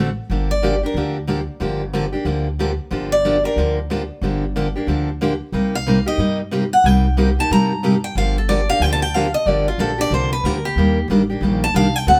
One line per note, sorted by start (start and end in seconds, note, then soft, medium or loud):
0.00 0.16 A1 medium
0.30 0.82 G1 medium
0.30 0.51 D3 medium
0.30 0.51 F3 medium
0.30 0.51 A#3 medium
0.30 0.51 D4 medium
0.30 0.51 G4 medium
0.51 0.81 D5 medium
0.62 0.73 D3 medium
0.62 0.73 F3 medium
0.62 0.74 A#3 medium
0.62 0.74 D4 medium
0.62 0.74 G4 loud
0.83 0.96 A#3 soft
0.83 0.95 D4 medium
0.83 0.95 G4 medium
0.83 1.15 A#4 medium
0.94 1.47 D2 medium
0.94 1.16 D3 medium
0.94 1.16 F3 medium
0.94 1.16 A#3 medium
0.94 1.16 D4 medium
0.94 1.17 G4 medium
1.27 1.38 D3 medium
1.27 1.39 F3 medium
1.27 1.39 A#3 medium
1.27 1.39 D4 medium
1.27 1.39 G4 loud
1.60 2.13 G1 medium
1.60 1.81 D3 medium
1.60 1.81 F3 medium
1.60 1.81 A#3 medium
1.60 1.81 D4 medium
1.60 1.81 G4 medium
1.93 2.04 D3 medium
1.93 2.04 F3 medium
1.93 2.04 A#3 medium
1.93 2.05 D4 medium
1.93 2.05 G4 loud
2.12 2.25 A#3 soft
2.12 2.25 D4 medium
2.12 2.25 G4 medium
2.25 2.78 D2 medium
2.25 2.46 D3 medium
2.25 2.46 F3 medium
2.25 2.46 A#3 medium
2.25 2.47 D4 medium
2.25 2.47 G4 medium
2.59 2.70 D3 medium
2.59 2.70 F3 medium
2.59 2.70 A#3 loud
2.59 2.70 D4 medium
2.59 2.70 G4 medium
2.91 3.44 G1 medium
2.91 3.11 D3 medium
2.91 3.12 F3 medium
2.91 3.12 A#3 medium
2.91 3.12 D4 medium
2.91 3.12 G4 medium
3.12 3.42 D5 loud
3.25 3.35 D3 medium
3.25 3.36 F3 medium
3.25 3.36 A#3 medium
3.25 3.36 D4 medium
3.25 3.36 G4 loud
3.44 3.57 A#3 soft
3.44 3.57 D4 medium
3.44 3.56 G4 medium
3.44 3.75 A#4 medium
3.56 4.09 D2 medium
3.56 3.78 D3 medium
3.56 3.78 F3 medium
3.56 3.78 A#3 medium
3.56 3.78 D4 medium
3.56 3.78 G4 medium
3.90 4.01 D3 medium
3.90 4.01 F3 medium
3.90 4.01 A#3 medium
3.90 4.01 D4 loud
3.90 4.01 G4 medium
4.21 4.74 G1 medium
4.21 4.43 D3 medium
4.21 4.43 F3 medium
4.21 4.43 A#3 medium
4.21 4.44 D4 medium
4.21 4.44 G4 medium
4.56 4.66 D3 medium
4.56 4.66 F3 medium
4.56 4.67 A#3 medium
4.56 4.67 D4 loud
4.56 4.67 G4 loud
4.76 4.87 A#3 soft
4.76 4.87 D4 soft
4.76 4.87 G4 medium
4.87 5.40 D2 medium
4.87 5.08 D3 medium
4.87 5.08 F3 medium
4.87 5.08 A#3 medium
4.87 5.09 D4 medium
4.87 5.09 G4 medium
5.21 5.32 D3 medium
5.21 5.32 F3 medium
5.21 5.32 A#3 medium
5.21 5.33 D4 loud
5.21 5.33 G4 loud
5.52 6.05 C2 medium
5.52 5.74 C3 medium
5.52 5.74 G3 medium
5.52 5.74 A#3 medium
5.52 5.74 D#4 medium
5.52 5.75 G4 medium
5.75 6.05 F5 loud
5.87 5.97 C3 medium
5.87 5.98 G3 medium
5.87 5.98 A#3 medium
5.87 5.98 D#4 medium
5.87 5.98 G4 loud
6.06 6.18 A#3 medium
6.06 6.18 D#4 medium
6.06 6.18 G4 medium
6.06 6.37 D#5 medium
6.18 6.71 G2 medium
6.18 6.39 C3 medium
6.18 6.39 G3 medium
6.18 6.40 A#3 medium
6.18 6.40 D#4 medium
6.18 6.40 G4 medium
6.51 6.62 C3 medium
6.51 6.63 G3 medium
6.51 6.63 A#3 loud
6.51 6.63 D#4 medium
6.51 6.63 G4 medium
6.73 6.86 F#5 loud
6.84 7.36 C2 medium
6.84 7.05 C3 medium
6.84 7.05 G3 medium
6.84 7.05 A#3 medium
6.84 7.06 D#4 medium
6.84 7.06 G4 medium
6.84 7.38 G5 medium
7.17 7.28 C3 loud
7.17 7.28 G3 medium
7.17 7.28 A#3 loud
7.17 7.28 D#4 loud
7.17 7.29 G4 loud
7.39 7.50 A#3 medium
7.39 7.50 D#4 soft
7.39 7.50 G4 medium
7.39 7.51 A5 loud
7.51 8.03 G2 medium
7.51 7.71 C3 medium
7.51 7.71 G3 medium
7.51 7.71 A#3 medium
7.51 7.71 D#4 medium
7.51 7.72 G4 medium
7.51 8.00 A#5 medium
7.83 7.94 C3 medium
7.83 7.94 G3 loud
7.83 7.94 A#3 medium
7.83 7.94 D#4 loud
7.83 7.94 G4 loud
8.04 8.16 G5 medium
8.15 8.67 G1 medium
8.15 8.36 D3 medium
8.15 8.37 F3 medium
8.15 8.37 A#3 medium
8.15 8.37 D4 medium
8.15 8.37 G4 medium
8.15 8.36 F5 medium
8.38 8.49 A4 medium
8.49 8.59 D3 medium
8.49 8.59 F3 loud
8.49 8.59 A#3 medium
8.49 8.60 D4 loud
8.49 8.60 G4 loud
8.49 8.68 D5 medium
8.69 8.82 A#3 soft
8.69 8.81 D4 medium
8.69 8.81 G4 medium
8.69 8.82 F5 loud
8.80 9.32 D2 medium
8.80 9.02 D3 medium
8.80 9.02 F3 medium
8.80 9.02 A#3 medium
8.80 9.02 D4 medium
8.80 9.02 G4 medium
8.80 8.92 G5 medium
8.93 9.02 A5 loud
9.02 9.14 G5 loud
9.14 9.25 D3 medium
9.14 9.25 F3 medium
9.14 9.25 A#3 loud
9.14 9.26 D4 medium
9.14 9.26 G4 loud
9.14 9.33 F5 medium
9.34 9.47 D#5 medium
9.46 9.72 G1 medium
9.46 9.67 D3 medium
9.46 9.67 F3 medium
9.46 9.67 A#3 medium
9.46 9.67 D4 medium
9.46 9.67 G4 medium
9.46 9.66 D5 medium
9.68 9.79 F4 medium
9.78 10.06 A#1 medium
9.78 9.90 D3 medium
9.78 9.90 F3 medium
9.78 9.90 A#3 loud
9.78 9.90 D4 medium
9.78 9.90 G4 loud
9.78 9.99 A4 medium
9.98 10.11 A#3 soft
9.98 10.11 D4 medium
9.98 10.10 G4 medium
9.98 10.12 D5 loud
10.10 10.39 C2 medium
10.10 10.32 D3 medium
10.10 10.32 F3 medium
10.10 10.32 A#3 medium
10.10 10.32 D4 medium
10.10 10.32 G4 medium
10.10 10.32 C5 medium
10.33 10.45 B4 medium
10.44 10.72 D2 medium
10.44 10.56 D3 medium
10.44 10.56 F3 medium
10.44 10.56 A#3 medium
10.44 10.56 D4 loud
10.44 10.56 G4 loud
10.44 10.64 A#4 medium
10.65 11.07 G4 medium
10.76 11.02 D#2 medium
10.76 10.98 D#3 medium
10.76 10.98 G3 medium
10.76 10.98 A#3 medium
10.76 10.98 D4 medium
10.76 10.98 G4 medium
11.08 11.36 A1 medium
11.08 11.21 D#3 medium
11.08 11.21 G3 medium
11.08 11.21 A#3 loud
11.08 11.21 D4 medium
11.08 11.21 G4 medium
11.30 11.42 A#3 soft
11.30 11.42 D4 medium
11.30 11.42 G4 medium
11.41 11.69 A#1 medium
11.41 11.63 D#3 medium
11.41 11.63 G3 medium
11.41 11.63 A#3 medium
11.41 11.63 D4 medium
11.41 11.63 G4 medium
11.64 11.75 A5 loud
11.74 12.02 C2 medium
11.74 11.86 D#3 medium
11.74 11.86 G3 medium
11.74 11.86 A#3 loud
11.74 11.86 D4 loud
11.74 11.86 G4 loud
11.74 11.96 F5 loud
11.96 12.07 G5 loud
12.06 12.20 D2 medium
12.06 12.20 D3 medium
12.06 12.20 A3 medium
12.06 12.20 C4 medium
12.06 12.20 F#4 medium
12.06 12.20 A4 medium
12.06 12.20 F#5 medium